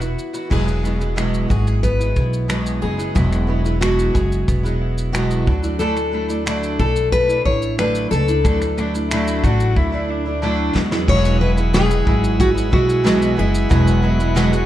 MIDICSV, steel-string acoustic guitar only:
0, 0, Header, 1, 2, 480
1, 0, Start_track
1, 0, Tempo, 660066
1, 372, Time_signature, 4, 2, 24, 8
1, 10659, End_track
2, 0, Start_track
2, 0, Title_t, "Steel-string acoustic guitar"
2, 0, Program_c, 0, 25
2, 0, Note_on_c, 0, 64, 65
2, 379, Note_on_c, 0, 68, 75
2, 390, Note_off_c, 0, 64, 0
2, 1069, Note_off_c, 0, 68, 0
2, 1099, Note_on_c, 0, 68, 74
2, 1329, Note_off_c, 0, 68, 0
2, 1331, Note_on_c, 0, 71, 88
2, 1806, Note_off_c, 0, 71, 0
2, 1815, Note_on_c, 0, 71, 88
2, 1880, Note_off_c, 0, 71, 0
2, 2050, Note_on_c, 0, 68, 85
2, 2277, Note_off_c, 0, 68, 0
2, 2292, Note_on_c, 0, 64, 86
2, 2768, Note_off_c, 0, 64, 0
2, 2771, Note_on_c, 0, 66, 88
2, 3723, Note_off_c, 0, 66, 0
2, 3731, Note_on_c, 0, 66, 87
2, 4211, Note_on_c, 0, 69, 96
2, 4231, Note_off_c, 0, 66, 0
2, 4933, Note_off_c, 0, 69, 0
2, 4941, Note_on_c, 0, 69, 100
2, 5177, Note_off_c, 0, 69, 0
2, 5180, Note_on_c, 0, 71, 117
2, 5404, Note_off_c, 0, 71, 0
2, 5420, Note_on_c, 0, 73, 92
2, 5661, Note_off_c, 0, 73, 0
2, 5664, Note_on_c, 0, 71, 91
2, 5887, Note_off_c, 0, 71, 0
2, 5897, Note_on_c, 0, 69, 94
2, 7309, Note_off_c, 0, 69, 0
2, 8067, Note_on_c, 0, 73, 110
2, 8294, Note_off_c, 0, 73, 0
2, 8297, Note_on_c, 0, 71, 90
2, 8362, Note_off_c, 0, 71, 0
2, 8538, Note_on_c, 0, 68, 99
2, 8987, Note_off_c, 0, 68, 0
2, 9019, Note_on_c, 0, 66, 105
2, 9084, Note_off_c, 0, 66, 0
2, 9258, Note_on_c, 0, 66, 91
2, 9735, Note_off_c, 0, 66, 0
2, 9738, Note_on_c, 0, 64, 81
2, 10659, Note_off_c, 0, 64, 0
2, 10659, End_track
0, 0, End_of_file